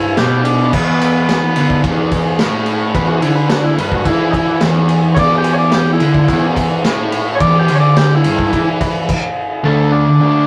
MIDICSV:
0, 0, Header, 1, 5, 480
1, 0, Start_track
1, 0, Tempo, 557621
1, 620, Time_signature, 4, 2, 24, 8
1, 9011, End_track
2, 0, Start_track
2, 0, Title_t, "Transistor combo organ"
2, 0, Program_c, 0, 18
2, 0, Note_on_c, 0, 64, 91
2, 148, Note_off_c, 0, 64, 0
2, 155, Note_on_c, 0, 67, 95
2, 374, Note_on_c, 0, 62, 82
2, 380, Note_off_c, 0, 67, 0
2, 609, Note_off_c, 0, 62, 0
2, 645, Note_on_c, 0, 59, 115
2, 1559, Note_off_c, 0, 59, 0
2, 2540, Note_on_c, 0, 71, 120
2, 2648, Note_off_c, 0, 71, 0
2, 2648, Note_on_c, 0, 66, 88
2, 2761, Note_off_c, 0, 66, 0
2, 2771, Note_on_c, 0, 64, 82
2, 2883, Note_off_c, 0, 64, 0
2, 2887, Note_on_c, 0, 71, 89
2, 3000, Note_off_c, 0, 71, 0
2, 3024, Note_on_c, 0, 66, 100
2, 3129, Note_off_c, 0, 66, 0
2, 3137, Note_on_c, 0, 64, 112
2, 3245, Note_off_c, 0, 64, 0
2, 3274, Note_on_c, 0, 71, 83
2, 3375, Note_off_c, 0, 71, 0
2, 3391, Note_on_c, 0, 66, 85
2, 3491, Note_on_c, 0, 64, 108
2, 3493, Note_off_c, 0, 66, 0
2, 3707, Note_on_c, 0, 63, 68
2, 3723, Note_off_c, 0, 64, 0
2, 3735, Note_off_c, 0, 63, 0
2, 3738, Note_on_c, 0, 64, 104
2, 3967, Note_off_c, 0, 64, 0
2, 4430, Note_on_c, 0, 73, 87
2, 4457, Note_off_c, 0, 73, 0
2, 4467, Note_on_c, 0, 74, 127
2, 4614, Note_off_c, 0, 74, 0
2, 4630, Note_on_c, 0, 67, 105
2, 4760, Note_on_c, 0, 73, 71
2, 4776, Note_off_c, 0, 67, 0
2, 4785, Note_off_c, 0, 73, 0
2, 4807, Note_on_c, 0, 74, 106
2, 4942, Note_on_c, 0, 67, 90
2, 4944, Note_off_c, 0, 74, 0
2, 5091, Note_off_c, 0, 67, 0
2, 5105, Note_on_c, 0, 64, 111
2, 5564, Note_off_c, 0, 64, 0
2, 6328, Note_on_c, 0, 73, 85
2, 6360, Note_off_c, 0, 73, 0
2, 6374, Note_on_c, 0, 74, 127
2, 6529, Note_off_c, 0, 74, 0
2, 6536, Note_on_c, 0, 67, 106
2, 6669, Note_on_c, 0, 73, 72
2, 6690, Note_off_c, 0, 67, 0
2, 6697, Note_off_c, 0, 73, 0
2, 6714, Note_on_c, 0, 74, 114
2, 6860, Note_off_c, 0, 74, 0
2, 6862, Note_on_c, 0, 67, 106
2, 7014, Note_off_c, 0, 67, 0
2, 7015, Note_on_c, 0, 64, 106
2, 7483, Note_off_c, 0, 64, 0
2, 8308, Note_on_c, 0, 69, 110
2, 8535, Note_on_c, 0, 62, 87
2, 8538, Note_off_c, 0, 69, 0
2, 9006, Note_off_c, 0, 62, 0
2, 9011, End_track
3, 0, Start_track
3, 0, Title_t, "Distorted electric guitar"
3, 0, Program_c, 1, 30
3, 0, Note_on_c, 1, 43, 106
3, 145, Note_off_c, 1, 43, 0
3, 154, Note_on_c, 1, 47, 105
3, 618, Note_off_c, 1, 47, 0
3, 633, Note_on_c, 1, 40, 111
3, 1336, Note_off_c, 1, 40, 0
3, 1349, Note_on_c, 1, 50, 107
3, 1575, Note_off_c, 1, 50, 0
3, 1590, Note_on_c, 1, 40, 109
3, 2054, Note_off_c, 1, 40, 0
3, 2071, Note_on_c, 1, 45, 106
3, 2534, Note_off_c, 1, 45, 0
3, 2538, Note_on_c, 1, 40, 106
3, 2767, Note_off_c, 1, 40, 0
3, 2767, Note_on_c, 1, 50, 109
3, 3241, Note_off_c, 1, 50, 0
3, 3248, Note_on_c, 1, 43, 108
3, 3481, Note_off_c, 1, 43, 0
3, 3486, Note_on_c, 1, 52, 95
3, 3960, Note_off_c, 1, 52, 0
3, 3978, Note_on_c, 1, 40, 114
3, 4439, Note_off_c, 1, 40, 0
3, 4449, Note_on_c, 1, 40, 112
3, 5163, Note_off_c, 1, 40, 0
3, 5164, Note_on_c, 1, 50, 104
3, 5400, Note_off_c, 1, 50, 0
3, 5408, Note_on_c, 1, 40, 101
3, 5883, Note_off_c, 1, 40, 0
3, 5883, Note_on_c, 1, 45, 117
3, 6362, Note_off_c, 1, 45, 0
3, 6382, Note_on_c, 1, 40, 110
3, 6611, Note_off_c, 1, 40, 0
3, 6625, Note_on_c, 1, 50, 114
3, 7094, Note_off_c, 1, 50, 0
3, 7109, Note_on_c, 1, 43, 99
3, 7336, Note_off_c, 1, 43, 0
3, 7354, Note_on_c, 1, 52, 109
3, 7820, Note_off_c, 1, 52, 0
3, 8294, Note_on_c, 1, 50, 92
3, 8312, Note_on_c, 1, 57, 101
3, 8329, Note_on_c, 1, 62, 99
3, 8675, Note_off_c, 1, 62, 0
3, 8679, Note_off_c, 1, 57, 0
3, 8781, Note_off_c, 1, 50, 0
3, 8784, Note_on_c, 1, 50, 109
3, 8809, Note_on_c, 1, 57, 105
3, 8823, Note_on_c, 1, 62, 113
3, 9011, Note_off_c, 1, 50, 0
3, 9011, Note_off_c, 1, 57, 0
3, 9011, Note_off_c, 1, 62, 0
3, 9011, End_track
4, 0, Start_track
4, 0, Title_t, "Muted distorted electric guitar strokes"
4, 8678, Note_on_c, 9, 29, 51
4, 8764, Note_off_c, 9, 29, 0
4, 9011, End_track
5, 0, Start_track
5, 0, Title_t, "Drums"
5, 147, Note_on_c, 9, 51, 100
5, 148, Note_on_c, 9, 38, 114
5, 233, Note_off_c, 9, 51, 0
5, 234, Note_off_c, 9, 38, 0
5, 386, Note_on_c, 9, 51, 83
5, 472, Note_off_c, 9, 51, 0
5, 630, Note_on_c, 9, 36, 116
5, 631, Note_on_c, 9, 49, 101
5, 716, Note_off_c, 9, 36, 0
5, 717, Note_off_c, 9, 49, 0
5, 873, Note_on_c, 9, 51, 83
5, 959, Note_off_c, 9, 51, 0
5, 1107, Note_on_c, 9, 51, 115
5, 1108, Note_on_c, 9, 38, 113
5, 1193, Note_off_c, 9, 51, 0
5, 1194, Note_off_c, 9, 38, 0
5, 1340, Note_on_c, 9, 51, 86
5, 1426, Note_off_c, 9, 51, 0
5, 1463, Note_on_c, 9, 36, 87
5, 1549, Note_off_c, 9, 36, 0
5, 1582, Note_on_c, 9, 51, 104
5, 1583, Note_on_c, 9, 36, 101
5, 1668, Note_off_c, 9, 51, 0
5, 1669, Note_off_c, 9, 36, 0
5, 1820, Note_on_c, 9, 51, 82
5, 1822, Note_on_c, 9, 36, 91
5, 1906, Note_off_c, 9, 51, 0
5, 1908, Note_off_c, 9, 36, 0
5, 2055, Note_on_c, 9, 51, 106
5, 2056, Note_on_c, 9, 38, 120
5, 2141, Note_off_c, 9, 51, 0
5, 2142, Note_off_c, 9, 38, 0
5, 2288, Note_on_c, 9, 51, 65
5, 2375, Note_off_c, 9, 51, 0
5, 2537, Note_on_c, 9, 36, 112
5, 2538, Note_on_c, 9, 51, 103
5, 2623, Note_off_c, 9, 36, 0
5, 2624, Note_off_c, 9, 51, 0
5, 2772, Note_on_c, 9, 51, 71
5, 2858, Note_off_c, 9, 51, 0
5, 3007, Note_on_c, 9, 51, 109
5, 3008, Note_on_c, 9, 38, 127
5, 3094, Note_off_c, 9, 38, 0
5, 3094, Note_off_c, 9, 51, 0
5, 3257, Note_on_c, 9, 51, 78
5, 3343, Note_off_c, 9, 51, 0
5, 3371, Note_on_c, 9, 36, 89
5, 3457, Note_off_c, 9, 36, 0
5, 3488, Note_on_c, 9, 51, 108
5, 3491, Note_on_c, 9, 36, 105
5, 3574, Note_off_c, 9, 51, 0
5, 3577, Note_off_c, 9, 36, 0
5, 3730, Note_on_c, 9, 36, 88
5, 3736, Note_on_c, 9, 51, 75
5, 3816, Note_off_c, 9, 36, 0
5, 3822, Note_off_c, 9, 51, 0
5, 3965, Note_on_c, 9, 51, 110
5, 3966, Note_on_c, 9, 38, 105
5, 4051, Note_off_c, 9, 51, 0
5, 4052, Note_off_c, 9, 38, 0
5, 4205, Note_on_c, 9, 51, 67
5, 4291, Note_off_c, 9, 51, 0
5, 4447, Note_on_c, 9, 36, 122
5, 4450, Note_on_c, 9, 51, 118
5, 4533, Note_off_c, 9, 36, 0
5, 4536, Note_off_c, 9, 51, 0
5, 4683, Note_on_c, 9, 51, 78
5, 4769, Note_off_c, 9, 51, 0
5, 4921, Note_on_c, 9, 51, 114
5, 4922, Note_on_c, 9, 38, 126
5, 5007, Note_off_c, 9, 51, 0
5, 5008, Note_off_c, 9, 38, 0
5, 5165, Note_on_c, 9, 51, 79
5, 5251, Note_off_c, 9, 51, 0
5, 5290, Note_on_c, 9, 36, 88
5, 5376, Note_off_c, 9, 36, 0
5, 5410, Note_on_c, 9, 36, 101
5, 5416, Note_on_c, 9, 51, 105
5, 5496, Note_off_c, 9, 36, 0
5, 5502, Note_off_c, 9, 51, 0
5, 5651, Note_on_c, 9, 36, 88
5, 5653, Note_on_c, 9, 51, 86
5, 5737, Note_off_c, 9, 36, 0
5, 5739, Note_off_c, 9, 51, 0
5, 5892, Note_on_c, 9, 51, 105
5, 5893, Note_on_c, 9, 38, 111
5, 5978, Note_off_c, 9, 51, 0
5, 5979, Note_off_c, 9, 38, 0
5, 6130, Note_on_c, 9, 51, 77
5, 6216, Note_off_c, 9, 51, 0
5, 6373, Note_on_c, 9, 51, 110
5, 6374, Note_on_c, 9, 36, 114
5, 6459, Note_off_c, 9, 51, 0
5, 6460, Note_off_c, 9, 36, 0
5, 6612, Note_on_c, 9, 51, 73
5, 6698, Note_off_c, 9, 51, 0
5, 6856, Note_on_c, 9, 51, 113
5, 6857, Note_on_c, 9, 38, 118
5, 6942, Note_off_c, 9, 51, 0
5, 6943, Note_off_c, 9, 38, 0
5, 7095, Note_on_c, 9, 51, 82
5, 7181, Note_off_c, 9, 51, 0
5, 7219, Note_on_c, 9, 36, 92
5, 7305, Note_off_c, 9, 36, 0
5, 7341, Note_on_c, 9, 36, 97
5, 7342, Note_on_c, 9, 51, 99
5, 7427, Note_off_c, 9, 36, 0
5, 7428, Note_off_c, 9, 51, 0
5, 7581, Note_on_c, 9, 51, 82
5, 7582, Note_on_c, 9, 36, 101
5, 7667, Note_off_c, 9, 51, 0
5, 7668, Note_off_c, 9, 36, 0
5, 7824, Note_on_c, 9, 36, 110
5, 7825, Note_on_c, 9, 57, 105
5, 7910, Note_off_c, 9, 36, 0
5, 7911, Note_off_c, 9, 57, 0
5, 9011, End_track
0, 0, End_of_file